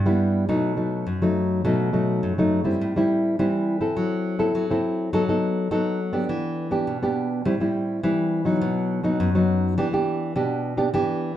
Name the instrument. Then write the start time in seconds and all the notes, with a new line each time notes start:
nylon-string guitar
Already playing: G2
0.06 G3 B3 E4
0.49 B2 F#3 A3 D#4
0.77 F#3 A3 D#4
1.07 F#2
1.22 F#3 A3 D#4
1.65 B2 F#3 A3 D#4
1.93 F#3 A3 D#4
2.23 F#2
2.38 F#3 A3 D#4
2.64 G3 C4 E4
2.81 A2
2.96 G3 C4 E4
3.39 E3 G3 C4 E4
3.81 C4 E4 A4
3.97 F#3
4.39 C4 E4 A4
4.55 F#3
4.70 C4 E4 A4
5.13 F#3 B3 D#4 A4
5.28 B3 D#4 A4
5.71 F#3 B3 D#4 A4
6.13 B3 D4 G4
6.29 E3
6.71 B3 D4 G4
6.87 B2
7.03 B3 D4 G4
7.45 A2 G3 C4 E4
7.60 G3 C4 E4
8.03 E3 G3 C4 E4
8.45 F#3 B3 D#4
8.62 B2
9.04 F#3 B3 D#4
9.20 F#2
9.35 F#3 B3 D#4
9.78 E3 B3 D4 G4
9.93 B3 D4 G4
10.36 B2 B3 D4 G4
10.77 B3 D4 G4
10.94 E3 B3 D4 G4